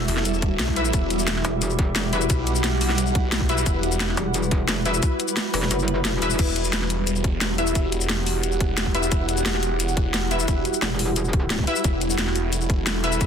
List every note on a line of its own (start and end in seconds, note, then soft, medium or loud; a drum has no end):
0.00 6.39 G3 medium
0.00 0.74 E4 medium
0.00 6.35 E4 medium
0.00 6.38 E4 medium
0.00 6.35 F#4 medium
0.00 0.92 A4 medium
0.00 0.74 B4 medium
0.00 0.74 E5 loud
0.00 1.34 E5 loud
0.08 0.58 E1 medium
0.08 open hi-hat medium
0.08 shaker soft
0.17 snare soft
0.25 closed hi-hat medium
0.25 shaker soft
0.34 shaker soft
0.42 kick loud
0.42 closed hi-hat medium
0.59 0.92 B1 loud
0.59 snare loud
0.59 closed hi-hat medium
0.59 shaker soft
0.68 kick medium
0.76 0.91 E4 medium
0.76 0.91 B4 medium
0.76 0.91 E5 loud
0.76 closed hi-hat medium
0.76 shaker soft
0.85 shaker medium
0.93 1.43 E1 medium
0.93 3.65 G4 medium
0.93 kick loud
0.93 closed hi-hat medium
0.93 shaker soft
1.10 closed hi-hat medium
1.10 shaker soft
1.19 shaker medium
1.28 snare loud
1.28 closed hi-hat medium
1.28 shaker soft
1.32 4.06 F#5 loud
1.36 snare soft
1.45 1.94 E1 loud
1.45 closed hi-hat medium
1.45 shaker soft
1.62 closed hi-hat medium
1.62 shaker soft
1.70 shaker soft
1.79 kick loud
1.79 closed hi-hat medium
1.96 2.28 E1 loud
1.96 snare loud
1.96 closed hi-hat medium
1.96 shaker soft
2.13 3.47 E4 medium
2.13 3.47 B4 medium
2.13 3.47 E5 loud
2.13 closed hi-hat medium
2.13 shaker soft
2.21 shaker medium
2.30 3.65 B1 loud
2.30 kick loud
2.30 closed hi-hat medium
2.30 shaker medium
2.47 closed hi-hat medium
2.47 shaker soft
2.55 shaker medium
2.64 snare loud
2.64 closed hi-hat medium
2.64 shaker soft
2.81 open hi-hat medium
2.81 shaker soft
2.89 snare soft
2.98 closed hi-hat medium
2.98 shaker soft
3.07 shaker soft
3.15 kick loud
3.15 closed hi-hat medium
3.32 snare loud
3.32 closed hi-hat medium
3.32 shaker soft
3.41 kick medium
3.49 4.83 E4 medium
3.49 4.83 B4 medium
3.49 4.83 E5 loud
3.49 closed hi-hat medium
3.49 shaker soft
3.58 shaker medium
3.66 4.16 E1 loud
3.66 6.38 B4 medium
3.66 kick loud
3.66 closed hi-hat loud
3.66 shaker medium
3.83 closed hi-hat medium
3.83 shaker soft
3.92 shaker medium
4.00 snare loud
4.00 closed hi-hat medium
4.00 shaker soft
4.05 6.41 B4 loud
4.09 snare soft
4.17 4.67 E1 medium
4.17 closed hi-hat medium
4.17 shaker soft
4.34 closed hi-hat medium
4.34 shaker soft
4.43 shaker soft
4.51 kick loud
4.51 closed hi-hat medium
4.68 5.01 E1 loud
4.68 snare loud
4.68 closed hi-hat medium
4.68 shaker soft
4.86 6.20 E4 medium
4.86 6.20 B4 medium
4.86 6.20 E5 loud
4.86 closed hi-hat medium
4.86 shaker soft
4.94 shaker medium
5.03 kick loud
5.03 closed hi-hat loud
5.03 shaker medium
5.20 closed hi-hat medium
5.20 shaker soft
5.28 shaker medium
5.37 snare loud
5.37 closed hi-hat medium
5.37 shaker medium
5.54 5.69 E1 loud
5.54 open hi-hat medium
5.54 shaker soft
5.62 snare soft
5.71 6.21 F#1 loud
5.71 closed hi-hat medium
5.71 shaker medium
5.79 shaker soft
5.88 closed hi-hat medium
6.05 snare loud
6.05 closed hi-hat loud
6.05 shaker medium
6.22 6.38 E1 medium
6.22 6.56 E4 medium
6.22 6.56 B4 medium
6.22 6.56 E5 loud
6.22 closed hi-hat medium
6.22 shaker soft
6.30 shaker medium
6.39 7.74 E1 medium
6.39 13.27 E4 medium
6.39 13.27 F#4 medium
6.39 11.82 G4 medium
6.39 kick loud
6.39 closed hi-hat loud
6.39 crash loud
6.39 shaker medium
6.56 closed hi-hat medium
6.56 shaker soft
6.65 shaker medium
6.73 snare loud
6.73 closed hi-hat loud
6.73 shaker soft
6.82 snare soft
6.90 13.27 G3 medium
6.90 closed hi-hat medium
6.90 shaker soft
7.07 closed hi-hat loud
7.07 shaker medium
7.16 shaker soft
7.21 12.68 F#5 medium
7.21 kick medium
7.21 closed hi-hat medium
7.41 snare loud
7.41 closed hi-hat loud
7.41 shaker medium
7.58 8.93 E4 medium
7.58 8.93 B4 medium
7.58 8.93 E5 loud
7.58 closed hi-hat medium
7.58 shaker soft
7.67 shaker medium
7.75 8.59 E1 loud
7.75 kick loud
7.75 closed hi-hat loud
7.75 shaker medium
7.92 closed hi-hat medium
7.92 shaker soft
8.01 shaker medium
8.09 snare loud
8.09 closed hi-hat medium
8.09 shaker soft
8.26 open hi-hat medium
8.26 shaker soft
8.43 closed hi-hat loud
8.43 shaker medium
8.52 shaker soft
8.60 8.76 E1 loud
8.60 kick loud
8.60 closed hi-hat medium
8.78 9.10 E1 loud
8.78 snare loud
8.78 closed hi-hat loud
8.78 shaker soft
8.86 kick medium
8.95 10.29 E4 medium
8.95 10.29 B4 medium
8.95 10.29 E5 loud
8.95 closed hi-hat medium
8.95 shaker soft
9.03 shaker medium
9.12 10.47 E1 loud
9.12 kick loud
9.12 closed hi-hat loud
9.12 shaker soft
9.29 closed hi-hat medium
9.29 shaker soft
9.37 shaker medium
9.46 snare loud
9.46 closed hi-hat medium
9.46 shaker soft
9.54 snare soft
9.63 closed hi-hat medium
9.63 shaker soft
9.80 closed hi-hat loud
9.80 shaker soft
9.88 shaker soft
9.97 kick loud
9.97 closed hi-hat medium
10.14 snare loud
10.14 closed hi-hat medium
10.14 shaker soft
10.31 11.65 E4 medium
10.31 11.65 B4 medium
10.31 11.65 E5 medium
10.31 closed hi-hat medium
10.31 shaker soft
10.40 shaker medium
10.48 10.64 E1 loud
10.48 kick loud
10.48 closed hi-hat loud
10.48 shaker soft
10.65 closed hi-hat medium
10.65 shaker soft
10.74 shaker medium
10.82 11.66 E1 loud
10.82 snare loud
10.82 closed hi-hat medium
10.82 shaker soft
10.99 open hi-hat medium
10.99 shaker soft
11.16 closed hi-hat medium
11.16 shaker soft
11.25 shaker soft
11.33 kick loud
11.33 closed hi-hat medium
11.50 snare loud
11.50 closed hi-hat medium
11.50 shaker soft
11.59 kick medium
11.67 11.82 E4 medium
11.67 11.82 B4 medium
11.67 11.82 E5 loud
11.67 closed hi-hat medium
11.67 shaker soft
11.76 shaker medium
11.84 13.19 E1 medium
11.84 13.27 A4 medium
11.84 kick loud
11.84 closed hi-hat medium
11.84 shaker soft
12.01 closed hi-hat medium
12.01 shaker soft
12.10 shaker medium
12.18 snare loud
12.18 closed hi-hat medium
12.18 shaker soft
12.27 snare soft
12.36 closed hi-hat medium
12.36 shaker soft
12.53 closed hi-hat medium
12.53 shaker soft
12.61 shaker soft
12.70 kick loud
12.70 closed hi-hat medium
12.87 snare loud
12.87 closed hi-hat medium
12.87 shaker soft
13.04 13.27 E4 medium
13.04 13.27 B4 medium
13.04 13.27 E5 loud
13.04 closed hi-hat medium
13.04 shaker soft
13.12 shaker medium
13.21 13.27 E1 medium
13.21 kick loud
13.21 closed hi-hat medium
13.21 shaker soft